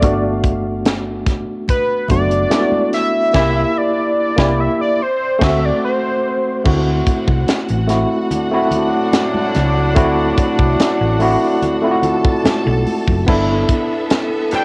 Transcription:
0.00 1.44 G1 loud
0.00 1.38 A3 medium
0.00 1.38 B3 medium
0.00 1.39 D4 medium
0.00 0.24 D5 medium
0.00 kick loud
0.00 closed hi-hat medium
0.00 muted conga medium
0.04 1.39 F#4 medium
0.44 kick medium
0.44 closed hi-hat medium
0.86 snare loud
0.86 closed hi-hat medium
0.86 high conga medium
1.26 kick medium
1.26 snare soft
1.26 closed hi-hat medium
1.26 muted conga soft
1.68 2.08 B4 loud
1.68 kick medium
1.68 closed hi-hat medium
1.68 muted conga soft
2.08 2.45 F#1 medium
2.08 2.43 A3 medium
2.08 2.44 B3 medium
2.08 2.44 D4 medium
2.08 2.45 F#4 medium
2.08 2.89 D5 loud
2.08 kick medium
2.08 closed hi-hat medium
2.08 low conga medium
2.31 closed hi-hat medium
2.50 3.19 A3 medium
2.50 3.19 B3 medium
2.50 3.20 D4 medium
2.50 2.59 E4 medium
2.50 snare loud
2.50 closed hi-hat medium
2.50 high conga medium
2.60 3.23 F#4 medium
2.72 high conga medium
2.93 3.79 E5 loud
2.93 snare soft
2.93 closed hi-hat medium
3.33 3.63 C2 loud
3.33 3.62 A#3 loud
3.33 3.63 E4 loud
3.33 3.63 G4 loud
3.33 kick loud
3.33 snare medium
3.33 crash medium
3.77 4.62 D5 loud
4.36 4.66 C2 loud
4.36 4.65 A#3 medium
4.36 4.66 E4 loud
4.36 4.67 G4 loud
4.36 kick loud
4.36 snare loud
4.60 4.80 E5 loud
4.81 5.04 D5 medium
5.02 5.45 C5 loud
5.39 5.70 D2 loud
5.39 5.68 A3 loud
5.39 5.69 C4 loud
5.39 5.70 F#4 loud
5.39 kick loud
5.39 snare loud
5.39 crash medium
5.43 5.66 E5 loud
5.65 5.84 D5 medium
5.85 6.63 C5 medium
6.64 7.00 D2 medium
6.64 7.67 A3 medium
6.64 7.67 C4 medium
6.64 7.67 E4 medium
6.64 12.00 F#4 medium
6.64 7.68 F#4 medium
6.64 12.00 F#5 medium
6.64 kick loud
6.64 crash medium
6.64 muted conga medium
7.07 kick medium
7.07 closed hi-hat medium
7.28 7.45 C2 medium
7.28 kick medium
7.48 snare loud
7.48 closed hi-hat loud
7.48 high conga medium
7.69 8.04 A1 medium
7.69 closed hi-hat medium
7.88 8.40 A3 medium
7.88 8.40 C4 medium
7.88 8.41 E4 medium
7.88 8.41 F#4 medium
7.88 snare soft
7.88 closed hi-hat medium
7.88 muted conga soft
8.31 12.83 A2 medium
8.31 12.83 F#3 medium
8.31 12.83 D4 medium
8.31 closed hi-hat medium
8.31 muted conga medium
8.31 low conga medium
8.51 9.70 A3 medium
8.51 9.71 C4 medium
8.51 9.71 E4 medium
8.51 9.72 F#4 loud
8.71 closed hi-hat medium
8.71 low conga medium
9.13 snare medium
9.13 closed hi-hat medium
9.13 high conga medium
9.34 high conga medium
9.55 9.97 C#2 medium
9.55 snare soft
9.55 closed hi-hat medium
9.55 high conga medium
9.95 10.31 D2 loud
9.95 10.98 A3 loud
9.95 10.98 C4 medium
9.95 10.99 E4 medium
9.95 10.99 F#4 loud
9.95 kick loud
9.95 closed hi-hat medium
9.95 muted conga medium
10.37 kick loud
10.37 closed hi-hat medium
10.59 10.76 C2 medium
10.59 kick medium
10.80 muted fingered electric bass stroke medium
10.80 snare loud
10.80 closed hi-hat medium
10.80 high conga medium
11.01 11.35 A1 medium
11.19 11.71 A3 medium
11.19 11.71 C4 medium
11.19 11.72 E4 medium
11.19 11.72 F#4 loud
11.19 open hi-hat medium
11.19 muted conga soft
11.62 closed hi-hat medium
11.62 muted conga soft
11.62 low conga medium
11.82 13.01 A3 medium
11.82 13.02 C4 medium
11.82 13.02 E4 medium
11.82 11.90 F4 medium
11.91 13.06 F#4 loud
12.03 13.25 A4 medium
12.03 13.25 A5 medium
12.03 closed hi-hat medium
12.03 low conga medium
12.25 kick loud
12.45 muted fingered electric bass stroke soft
12.45 snare loud
12.45 closed hi-hat loud
12.45 high conga medium
12.66 12.84 B1 loud
12.66 high conga medium
12.87 open hi-hat soft
12.87 high conga medium
13.08 13.25 F#1 medium
13.08 kick medium
13.26 13.63 G1 loud
13.26 14.63 B3 medium
13.26 14.65 B3 medium
13.26 14.64 D4 medium
13.26 14.64 E4 medium
13.26 14.65 A4 medium
13.26 14.65 A4 loud
13.26 14.65 E5 medium
13.26 kick loud
13.26 crash medium
13.26 muted conga medium
13.69 kick medium
13.69 closed hi-hat medium
14.10 snare loud
14.10 closed hi-hat medium
14.10 high conga medium
14.51 14.65 B2 medium
14.51 14.65 A3 medium
14.51 14.65 D4 medium
14.51 muted fingered electric bass stroke soft
14.51 snare soft
14.51 closed hi-hat medium
14.51 muted conga soft
14.55 14.65 G5 loud

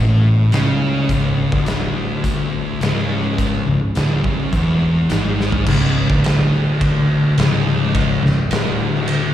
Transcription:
0.00 0.48 A1 loud
0.00 0.51 A2 loud
0.52 1.06 C#2 medium
0.52 1.09 C#3 loud
0.52 snare loud
0.52 closed hi-hat medium
1.09 1.50 C#1 loud
1.09 1.51 C#2 loud
1.09 kick loud
1.09 closed hi-hat medium
1.52 2.77 D1 loud
1.52 2.81 D2 medium
1.52 kick loud
1.66 snare loud
1.66 closed hi-hat medium
2.24 kick medium
2.24 closed hi-hat medium
2.81 3.63 C#1 medium
2.81 3.66 C#2 loud
2.81 snare loud
2.81 closed hi-hat medium
2.97 snare soft
3.38 kick loud
3.38 closed hi-hat medium
3.66 3.93 C#1 medium
3.66 3.90 C#2 medium
3.95 4.23 D1 medium
3.95 4.23 D2 loud
3.95 snare loud
3.95 closed hi-hat medium
4.24 4.51 F#1 medium
4.24 4.52 F#2 loud
4.24 kick medium
4.52 5.06 E1 loud
4.52 5.09 E2 loud
4.52 kick medium
4.52 closed hi-hat medium
5.10 5.63 G#1 medium
5.10 5.66 G#2 loud
5.10 snare loud
5.10 closed hi-hat medium
5.40 snare medium
5.52 floor tom medium
5.66 6.07 C#1 loud
5.66 6.09 C#2 loud
5.66 kick loud
5.66 crash loud
6.10 7.34 D1 loud
6.10 7.37 D2 loud
6.10 kick loud
6.24 snare loud
6.24 ride bell medium
6.81 kick loud
6.81 ride bell medium
7.37 8.19 C#1 loud
7.37 8.22 C#2 loud
7.37 snare loud
7.37 ride bell medium
7.95 kick loud
7.95 ride bell medium
8.23 8.49 C#1 medium
8.23 8.46 C#2 medium
8.23 snare soft
8.51 9.33 D1 loud
8.51 9.34 D2 loud
8.51 snare loud
8.51 ride bell medium
9.08 ride bell medium

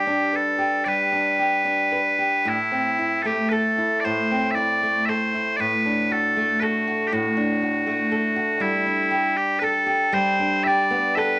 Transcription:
0.00 0.85 G3 medium
0.00 0.36 G4 medium
0.00 0.57 G4 soft
0.07 1.11 D4 soft
0.33 0.84 A4 medium
0.33 1.91 B4 soft
0.58 1.38 G4 soft
0.84 2.57 G3 medium
0.84 2.48 B4 medium
0.84 0.88 D5 medium
1.12 1.64 D4 soft
1.39 2.17 G4 soft
1.65 2.56 D4 soft
1.92 2.57 B4 soft
2.19 2.57 G4 soft
2.45 4.04 A2 medium
2.45 3.22 E4 medium
2.72 4.30 C4 soft
2.99 3.77 E4 soft
3.22 4.82 A3 soft
3.22 3.49 G4 soft
3.22 3.26 A4 soft
3.49 5.09 A4 soft
3.49 4.00 A4 medium
3.49 3.52 B4 medium
3.78 4.55 E4 soft
4.00 4.04 D5 medium
4.04 5.58 A2 medium
4.04 4.51 C5 medium
4.31 5.71 C4 soft
4.51 4.55 E5 medium
4.55 5.33 E4 soft
4.55 5.06 D5 medium
4.83 6.36 A3 soft
5.06 6.61 A4 soft
5.06 5.56 C5 medium
5.06 5.09 E5 medium
5.34 5.70 E4 soft
5.56 7.11 A2 medium
5.56 5.60 D5 medium
5.60 6.12 B4 medium
5.86 7.36 D4 soft
6.11 6.86 F#4 soft
6.11 6.60 A4 medium
6.37 7.86 A3 soft
6.60 7.07 F#4 medium
6.60 8.11 A4 soft
6.60 6.63 B4 medium
6.88 7.61 F#4 soft
7.07 7.13 G4 soft
7.12 8.71 A2 medium
7.12 8.61 F#4 medium
7.37 8.86 D4 soft
7.62 8.35 F#4 soft
7.87 9.14 A3 soft
8.12 9.14 A4 soft
8.36 8.71 F#4 soft
8.60 10.11 G3 medium
8.60 9.37 E4 medium
8.86 10.38 D4 soft
9.11 9.85 G4 soft
9.37 9.59 G4 medium
9.59 11.17 A4 soft
9.59 9.64 B4 medium
9.64 10.14 A4 medium
9.86 10.65 G4 soft
10.12 11.39 G3 medium
10.12 10.64 C5 medium
10.39 11.39 D4 soft
10.64 11.39 G4 soft
10.64 11.15 D5 medium
10.64 10.68 E5 medium
10.91 11.39 B3 soft
11.15 11.39 A4 soft
11.15 11.39 B4 medium
11.15 11.19 E5 medium

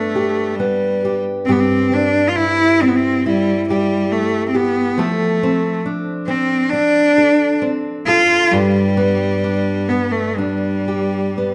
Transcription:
0.00 1.46 G2 soft
0.00 0.57 A3 medium
0.00 0.58 B3 soft
0.00 1.95 D4 soft
0.00 0.15 G4 soft
0.15 1.04 G4 soft
0.55 1.23 G3 medium
0.60 1.57 B3 soft
1.05 1.49 G4 soft
1.45 4.98 G2 medium
1.45 1.54 C4 medium
1.45 3.69 G4 soft
1.52 1.61 B3 medium
1.60 1.95 C4 medium
1.92 2.82 C4 soft
1.92 2.31 D4 medium
2.29 2.38 F4 medium
2.36 2.84 E4 medium
2.36 3.25 E4 soft
2.82 2.90 C4 medium
2.82 5.43 C4 soft
2.88 2.98 B3 medium
2.96 3.26 C4 medium
3.26 3.67 G3 medium
3.26 5.06 E4 soft
3.68 4.14 G3 medium
3.68 4.53 G4 soft
4.12 4.48 A3 medium
4.49 4.57 C4 soft
4.54 5.00 B3 medium
4.54 4.97 G4 soft
4.98 8.53 F3 medium
4.98 5.85 A3 medium
4.98 7.18 A4 medium
5.43 6.27 C4 soft
5.86 6.73 D4 soft
6.27 6.72 C4 medium
6.27 7.61 C4 soft
6.70 7.62 D4 medium
6.70 9.44 D4 medium
7.18 8.08 A4 medium
7.62 8.61 C4 soft
8.06 8.53 F4 medium
8.06 8.54 A4 medium
8.52 11.54 G2 medium
8.52 9.91 G3 medium
8.52 10.88 G4 medium
8.97 9.90 B3 soft
9.44 10.38 D4 soft
9.89 10.13 B3 medium
9.89 11.37 B3 soft
10.12 10.39 A3 medium
10.37 11.54 G3 medium
10.37 11.54 D4 soft
10.88 11.54 G4 soft
11.38 11.54 B3 soft

